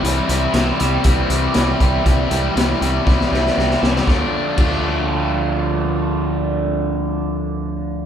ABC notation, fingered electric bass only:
X:1
M:4/4
L:1/8
Q:1/4=119
K:Dm
V:1 name="Fingered electric bass" clef=bass
C,, C,, C,, C,, C,, C,, C,, C,, | C,, C,, C,, C,, C,, C,, C,, C,, | D,, z D,,6- | D,,8 |]